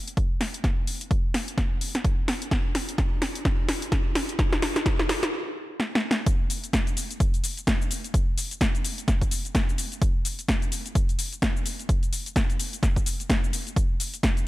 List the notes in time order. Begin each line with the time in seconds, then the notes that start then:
0.08 closed hi-hat
0.17 kick, closed hi-hat
0.41 snare, open hi-hat
0.54 closed hi-hat
0.64 kick, snare, closed hi-hat
0.87 open hi-hat
1.01 closed hi-hat
1.11 kick, closed hi-hat
1.34 snare, open hi-hat
1.48 closed hi-hat
1.58 kick, snare, closed hi-hat
1.81 open hi-hat
1.95 snare, closed hi-hat
2.04 kick, closed hi-hat
2.28 snare, open hi-hat
2.42 closed hi-hat
2.51 kick, snare, closed hi-hat
2.75 snare, open hi-hat
2.89 closed hi-hat
2.98 kick, snare, closed hi-hat
3.22 snare, open hi-hat
3.35 closed hi-hat
3.45 kick, snare, closed hi-hat
3.69 snare, open hi-hat
3.82 closed hi-hat
3.92 kick, snare, closed hi-hat
4.15 snare, open hi-hat
4.29 closed hi-hat
4.39 kick, snare, closed hi-hat
4.53 snare
4.62 snare, open hi-hat
4.76 snare, closed hi-hat
4.86 kick, snare, closed hi-hat
4.99 snare
5.09 snare, open hi-hat
5.23 snare, closed hi-hat
5.80 snare
5.95 snare
6.11 snare
6.26 kick, closed hi-hat, shaker
6.50 open hi-hat, shaker
6.64 closed hi-hat, shaker
6.73 kick, snare, closed hi-hat, shaker
6.87 closed hi-hat, shaker
6.97 open hi-hat, shaker
7.11 closed hi-hat, shaker
7.20 kick, closed hi-hat, shaker
7.34 closed hi-hat, shaker
7.44 open hi-hat, shaker
7.57 closed hi-hat, shaker
7.67 kick, snare, closed hi-hat, shaker
7.82 shaker
7.91 open hi-hat, shaker
8.04 closed hi-hat, shaker
8.14 kick, closed hi-hat, shaker
8.38 open hi-hat, shaker
8.51 closed hi-hat, shaker
8.61 kick, snare, closed hi-hat, shaker
8.75 closed hi-hat, shaker
8.84 open hi-hat, shaker
8.98 closed hi-hat, shaker
9.08 kick, snare, closed hi-hat, shaker
9.21 kick, closed hi-hat, shaker
9.31 open hi-hat, shaker
9.45 closed hi-hat, shaker
9.55 kick, snare, closed hi-hat, shaker
9.69 shaker
9.78 open hi-hat, shaker
9.92 closed hi-hat, shaker
10.02 kick, closed hi-hat, shaker
10.25 open hi-hat, shaker
10.39 closed hi-hat, shaker
10.48 kick, snare, closed hi-hat, shaker
10.62 closed hi-hat, shaker
10.72 open hi-hat, shaker
10.86 closed hi-hat, shaker
10.95 kick, closed hi-hat, shaker
11.09 closed hi-hat, shaker
11.19 open hi-hat, shaker
11.32 closed hi-hat, shaker
11.42 kick, snare, closed hi-hat, shaker
11.57 shaker
11.66 open hi-hat, shaker
11.79 closed hi-hat, shaker
11.89 kick, closed hi-hat, shaker
12.03 closed hi-hat, shaker
12.13 open hi-hat, shaker
12.26 closed hi-hat, shaker
12.36 kick, snare, closed hi-hat, shaker
12.50 closed hi-hat, shaker
12.59 open hi-hat, shaker
12.73 closed hi-hat, shaker
12.83 kick, snare, closed hi-hat, shaker
12.96 kick, closed hi-hat, shaker
13.06 open hi-hat, shaker
13.20 closed hi-hat, shaker
13.30 kick, snare, closed hi-hat, shaker
13.44 shaker
13.53 open hi-hat, shaker
13.67 closed hi-hat, shaker
13.76 kick, closed hi-hat, shaker
14.00 open hi-hat, shaker
14.14 closed hi-hat, shaker
14.23 kick, snare, closed hi-hat, shaker
14.37 closed hi-hat, shaker